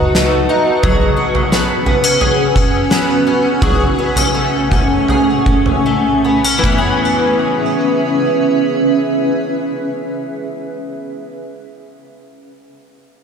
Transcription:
0.00 0.46 C#2 medium
0.00 0.83 F#3 medium
0.00 0.14 A3 medium
0.00 0.48 D#4 soft
0.00 0.83 F#4 medium
0.00 3.58 B4 medium
0.00 6.60 F#5 medium
0.00 0.80 A5 medium
0.00 0.80 D#6 medium
0.15 0.90 A3 medium
0.15 snare medium
0.49 0.90 D#4 medium
0.83 3.62 F#3 medium
0.83 3.59 C#4 medium
0.83 2.20 G#4 medium
0.83 6.60 G#5 medium
0.83 3.59 E6 medium
0.83 kick loud
0.83 floor tom medium
1.17 1.86 C#4 medium
1.35 floor tom medium
1.52 1.85 B3 medium
1.52 snare medium
1.86 2.04 B3 medium
1.86 floor tom medium
2.04 2.55 C#4 soft
2.21 3.63 G#4 medium
2.21 floor tom medium
2.56 3.26 C#4 medium
2.56 kick medium
2.90 3.69 B3 medium
2.90 snare loud
3.27 3.98 C#4 soft
3.61 6.58 F#3 medium
3.61 6.61 A3 medium
3.61 6.61 C#4 medium
3.61 5.09 G#4 medium
3.61 6.60 C#6 medium
3.61 kick loud
3.61 floor tom medium
3.99 4.17 B3 soft
4.16 4.71 C#4 soft
4.16 floor tom medium
4.35 5.84 A3 medium
4.71 5.46 C#4 soft
4.71 kick medium
4.71 floor tom medium
5.08 6.78 G#4 medium
5.08 floor tom medium
5.46 6.24 C#4 soft
5.46 kick medium
5.66 floor tom medium
5.86 6.66 A3 soft
6.25 6.44 B3 soft
6.44 6.71 C#4 soft
6.58 11.31 E3 medium
6.62 11.36 B3 medium
6.62 10.60 C#4 medium
6.62 10.60 G#4 medium
6.62 10.60 B4 medium
6.62 10.60 E5 medium
6.62 kick medium
6.62 ride medium
6.72 11.39 C#4 medium
6.78 11.42 G#4 medium

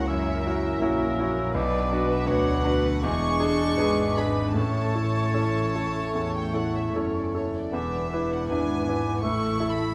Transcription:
0.00 0.82 C#2 soft
0.00 1.59 C#2 soft
0.00 0.81 C#3 soft
0.00 0.81 A#3 soft
0.00 0.47 E4 soft
0.00 0.47 F#4 soft
0.07 0.45 F#2 soft
0.07 0.80 C#4 soft
0.07 1.53 E4 soft
0.07 1.53 A#4 soft
0.07 0.44 C#5 soft
0.07 1.19 E5 medium
0.07 0.82 E6 soft
0.44 0.80 E4 soft
0.44 0.79 F#4 soft
0.44 1.53 A#4 medium
0.81 1.54 A#1 soft
0.81 1.54 A#2 soft
0.81 1.15 A#3 soft
0.81 1.54 C#4 soft
0.81 1.16 E4 soft
0.81 1.16 F#4 soft
0.81 1.55 E6 soft
1.20 1.53 E4 soft
1.20 1.53 F#4 soft
1.54 1.91 B1 medium
1.54 2.28 B1 soft
1.54 2.29 B2 medium
1.54 2.24 B3 soft
1.54 2.26 D4 soft
1.54 2.26 B4 soft
1.54 2.27 B4 medium
1.54 2.06 D5 medium
1.54 2.25 D6 soft
1.91 2.24 D4 soft
1.91 2.25 F#4 medium
2.12 2.30 E5 medium
2.26 3.04 D2 soft
2.26 3.05 D2 soft
2.26 2.62 B3 soft
2.26 3.04 B3 soft
2.26 2.62 D4 soft
2.26 3.03 D4 medium
2.26 2.62 F#4 soft
2.26 3.03 B4 soft
2.26 2.66 C#5 soft
2.26 3.05 F#5 medium
2.26 2.75 D6 medium
2.65 3.00 D4 soft
2.65 3.01 F#4 soft
2.65 3.05 B4 medium
3.03 3.79 E1 medium
3.03 3.41 E2 medium
3.03 3.80 E2 soft
3.03 4.39 G#3 medium
3.03 4.54 D4 medium
3.03 4.58 G#4 soft
3.03 3.43 G#4 soft
3.03 4.16 C#6 medium
3.03 4.54 D6 medium
3.40 3.75 D4 soft
3.40 3.75 G#4 soft
3.40 3.80 A4 medium
3.77 4.56 G#1 soft
3.77 4.56 G#2 soft
3.77 4.13 B3 soft
3.77 4.14 D4 soft
3.77 4.14 G#4 soft
3.77 4.58 B4 soft
4.17 4.53 D4 soft
4.17 4.53 G#4 soft
4.17 4.57 B5 medium
4.54 6.94 A1 soft
4.54 4.95 A2 soft
4.54 6.94 A2 soft
4.54 7.35 A3 soft
4.54 7.48 C#4 soft
4.54 7.48 A4 soft
4.54 7.33 C#5 medium
4.54 6.32 A5 medium
4.54 7.36 C#6 soft
4.95 5.32 E4 soft
4.95 5.32 A4 soft
5.34 5.71 C#4 soft
5.34 5.71 E4 soft
5.34 5.71 A4 soft
5.76 6.12 E4 soft
5.76 6.12 A4 soft
6.15 6.54 E2 soft
6.38 6.56 G5 soft
6.54 6.90 E4 soft
6.54 6.90 A4 soft
6.54 6.75 F#5 soft
6.77 6.96 E5 soft
6.94 7.51 F#1 soft
6.94 7.51 F#2 soft
6.94 7.31 C#4 soft
6.94 7.31 E4 soft
6.94 7.31 A4 soft
6.94 7.15 C#5 soft
7.17 7.36 D5 soft
7.34 7.69 E4 soft
7.34 7.69 A4 soft
7.34 7.54 C#5 soft
7.58 7.75 D5 soft
7.71 8.45 E1 soft
7.71 8.45 E2 soft
7.71 8.10 E2 soft
7.71 8.09 B3 soft
7.71 8.44 D4 soft
7.71 8.44 B4 soft
7.71 8.30 E5 medium
7.71 8.10 D6 soft
8.09 8.47 B3 soft
8.09 8.46 B4 soft
8.09 8.49 D6 soft
8.14 8.47 E4 soft
8.32 8.50 F#5 soft
8.48 9.23 G#1 soft
8.48 9.23 G#2 soft
8.48 8.84 B3 soft
8.48 9.21 D4 soft
8.48 8.84 D4 soft
8.48 9.22 B4 soft
8.48 9.23 G#5 medium
8.48 8.86 D6 soft
8.52 8.85 E4 soft
8.52 8.84 B4 soft
8.85 9.22 B3 soft
8.85 9.23 D6 soft
8.89 9.21 E4 soft
8.89 9.21 B4 soft
9.22 9.94 A1 soft
9.22 9.94 A2 soft
9.22 9.59 A2 soft
9.22 9.59 A3 soft
9.22 9.92 E4 soft
9.22 9.94 E4 soft
9.22 9.94 A4 soft
9.22 9.71 C#6 medium
9.22 9.59 E6 soft
9.60 9.94 A3 soft
9.60 9.93 E4 soft
9.60 9.93 A4 soft
9.60 9.94 E6 soft
9.71 9.94 B5 medium

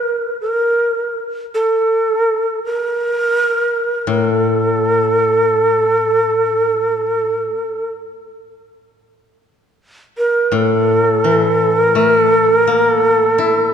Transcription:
0.00 0.35 A4 soft
0.00 0.36 A#4 medium
0.41 1.18 A#4 medium
1.54 2.60 A4 medium
2.65 4.10 A#4 medium
4.07 7.45 A2 soft
4.07 4.22 A#4 medium
4.22 7.90 A4 medium
10.18 10.57 A#4 medium
10.52 13.74 A2 soft
10.52 11.87 A4 medium
11.24 13.74 E3 soft
11.87 12.14 A#4 medium
11.95 13.74 A3 soft
12.14 12.60 A4 medium
12.60 12.87 A#4 medium
12.67 13.74 A#3 soft
12.87 13.74 A4 medium
13.38 13.74 E4 soft

